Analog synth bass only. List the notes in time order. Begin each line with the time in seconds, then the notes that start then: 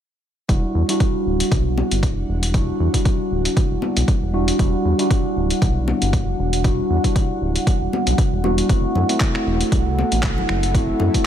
0.49 E1
0.75 E2
1.26 D1
1.52 B1
1.91 G1
2.17 E1
2.28 E1
2.80 E2
3.31 D1
3.71 E1
3.97 B1
4.22 E1
4.59 E1
4.85 E2
5.36 D1
5.62 B1
6.02 G1
6.27 E1
6.39 E1
6.90 E2
7.41 D1
7.81 E1
8.07 B1
8.32 E1
8.69 F#1
8.95 F#2
9.46 E1
9.72 C2
10.12 A1
10.37 F#1
10.49 F#1
11.00 F#2